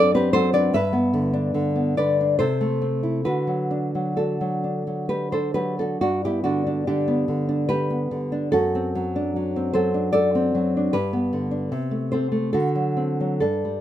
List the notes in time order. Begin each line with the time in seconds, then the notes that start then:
Already playing: F#2 F#3 C4 D4 A4 D5
0.14 C4 G4 B4
0.33 F#3 A4 C5
0.53 D4 B4 D5
0.74 G2 B4 E5
0.93 B3
1.13 D3
1.33 D4
1.54 D3
1.76 B3
1.97 D3 B4 D5
2.21 D4
2.39 C3 A4 C5
2.61 A3
2.82 C4
3.03 E4
3.25 D3 F#4 B4
3.47 F#3
3.71 D4
3.95 F#3
4.17 D4 F#4 A4
4.41 F#3
4.64 D4
4.87 F#3
5.09 G4 B4
5.32 D4 A4 C5
5.54 F#3 G4 B4
5.79 D4 F#4 A4
6.01 G2 D4 F#4
6.25 B3 E4 G4
6.44 D3 D4 F#4
6.67 D4
6.87 D3 D4 G4
7.08 B3
7.28 D3
7.49 D4
7.69 G4 B4
7.90 B3
8.11 D3
8.32 D4
8.52 F#2 F#4 A4
8.75 C4
8.95 F#3
9.16 D4
9.36 F#3
9.56 C4
9.73 F#3 A4 C5
9.94 D4
10.13 A4 D5
10.35 C4
10.55 F#3
10.77 D4
10.93 G2 G4 B4
11.13 B3
11.33 D3
11.51 D4
11.72 C3
11.91 A3
12.12 C4 A4 C5
12.32 A3
12.53 D3 F#4 A4
12.75 F#3
12.97 C4
13.20 F#3
13.40 G2 D4 A4
13.65 G3